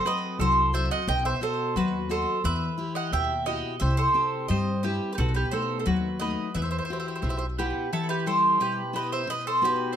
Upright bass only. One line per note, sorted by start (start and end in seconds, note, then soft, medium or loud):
0.39 0.87 C2 medium
1.08 1.32 B1 loud
1.76 2.24 D#2 medium
2.44 2.68 E2 loud
3.12 3.60 D#2 medium
3.81 4.05 C2 loud
4.49 4.97 G2 medium
5.18 5.42 B1 loud
5.86 6.34 D#2 medium
6.55 6.79 E2 loud
7.23 7.71 B1 medium